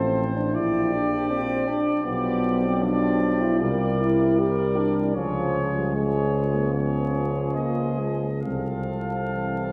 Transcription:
Already playing: A1 F3 C4 A4 C5
0.36 D4
0.54 A#1 F3 E4 G4 D5
0.92 D4
1.31 C4
1.68 D4
2.04 B1 F3 B3 D5
2.09 G4
2.64 C4
2.82 F3 D4 G4 D5
3.23 G4
3.41 E4
3.60 C2 G3 F4 A#4 D5
3.99 E4
4.36 G3 G4 D5
4.41 A#4
4.77 D4
5.13 C#2 F3 G#4 C#5
5.17 F3
5.76 G3
5.95 F3 G#3 G#4 C#5
6.55 A#3
6.73 F3 B3 C#5
6.77 G#4
7.13 C#4
7.54 A#3 D#5
7.99 G#3
8.42 C2 F3 C4 A4 F5
9.35 E3

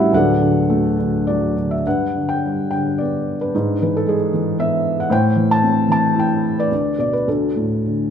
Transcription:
Already playing: A1 A2 G3 C#4 E4 F#4 G4 C#5 D5 E5 F#5 G5
0.13 D1 D2 F#4 A4 D5 F#5
0.40 D3
0.70 A3
0.99 D3
1.27 F#3 D5
1.57 D3
1.71 E5
1.86 G2 B4 F#5
2.15 D3
2.29 G5
2.45 G3
2.71 D3 G5
2.98 B3 D5
3.41 D4 B4
3.55 G#2
3.82 E3 B4
3.97 A4
4.06 G#3 G#4
4.33 E3
4.58 B3 E5
5.00 F#5
5.10 A2 C5 G5
5.36 E3
5.51 A5
5.62 C4
5.88 E3 A5
6.16 E4 G5
6.59 B4 D5
6.72 D2
6.98 B2 D5
7.13 B4
7.27 D2 F#4 A4
7.56 A2
7.86 D3

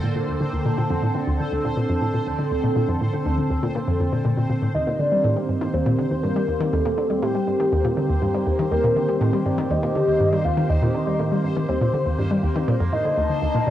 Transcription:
Already playing: D3 A#3 C4 A4 C5
0.03 A2
0.16 A#2
0.28 D2
0.41 D3
0.53 D2
0.65 A#2
0.78 A#2 C4
0.90 F2
1.03 A2
1.15 D3
1.27 D2
1.40 D3
1.52 D2
1.65 A#2
1.77 A#2
1.89 F2
2.02 A2
2.14 A#2
2.26 D2
2.39 D3
2.51 D2
2.64 A#2
2.76 A#2
2.88 F2
3.01 A2
3.13 D3
3.26 D2
3.38 D3
3.50 D2
3.63 A#2
3.75 A#2
3.88 F2
4.00 F2
4.13 A#2
4.25 A#2
4.38 A#2
4.50 A#2
4.62 A2
4.75 D#2 D#3 A#3 G4 C5 D#5
4.87 A#2
4.99 D3 D5
5.12 G3
5.24 A2
5.37 G3
5.49 G2
5.61 D#3
5.74 D#2 C5
5.86 A#2
5.99 D3
6.11 D#2
6.23 G2 A#4
6.36 G3
6.48 D#2
6.60 D#3
6.73 D#2 A4
6.85 A#2
6.98 D3
7.10 G3
7.22 A2 G4
7.35 G3
7.47 G2
7.60 D#3
7.72 D#2
7.85 A#2
7.97 D3
8.09 D#2
8.22 G2
8.34 G3
8.47 D#2
8.59 D#3
8.71 D#2 A#4
8.84 A#2
8.96 D3
9.09 G3
9.21 A2
9.33 G3
9.46 G2 D5
9.58 D#3
9.70 D#2 D#5
9.83 A#2
9.95 D3
10.08 D#2
10.20 G2
10.33 G3
10.45 D#2 F5
10.57 D#3
10.70 D#2 D#5
10.82 A#2
10.94 D3
11.07 G3
11.19 A2
11.32 G3
11.44 G2
11.57 D#3
11.69 D#2 C5
11.81 A#2
11.94 D3
12.06 D#2
12.18 G2
12.31 G3
12.43 D#2
12.56 D#3
12.68 A#2 D3 A#3 A5
12.80 F2
12.93 A2 D#5
13.05 D3
13.17 D2
13.30 D3
13.42 D2
13.55 A#2
13.67 A#2 D5

